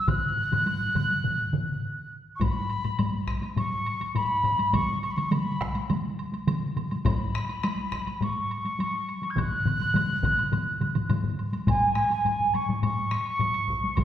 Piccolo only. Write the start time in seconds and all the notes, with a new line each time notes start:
0.08 F#6
2.35 C#6
2.42 B5
3.57 C#6
4.15 B5
4.73 C#6
5.02 C#6
5.10 B5
5.16 C#6
5.31 B5
7.06 B5
8.23 C#6
9.30 G#6
9.38 F#6
11.69 G#5
12.54 C#6
12.82 C#6
13.96 B5